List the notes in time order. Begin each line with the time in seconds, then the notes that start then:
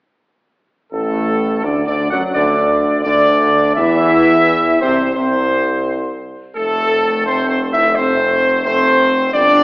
0.92 A1 A2 A3 A4
1.64 D2 D3 D4 D5
1.87 D2 D3 D4 D5
2.11 F#2 F#3 F#4 F#5
2.34 D2 D3 D4 D5
3.04 D2 D3 D4 D5
3.75 E2 E3 E4 E5
4.81 C2 C3 C4 C5
5.15 C2 C3 C4 C5
6.56 F1 C3 A3 A4
7.26 C3 A3 C4 C5
7.47 C4 C5
7.72 E4 E5
7.95 C3 A3 C4 C5
8.64 C3 A3 C4 C5
9.33 G1 B2 G3 D4 D5